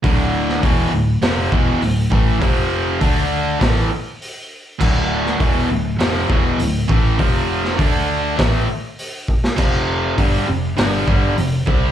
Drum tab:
CC |----------------|----------------|x---------------|----------------|
HH |o---o---o---o---|o---o---o---o---|----o---o---o---|o---o---o---o---|
SD |---o----o-------|--------o-------|---o----o-------|---o----o------o|
BD |o---o-----o---o-|o---o---o-------|o---o-----o---o-|o---o---o-----o-|

CC |x---------------|
HH |----o---o---o---|
SD |--------o-------|
BD |o---o-----o---o-|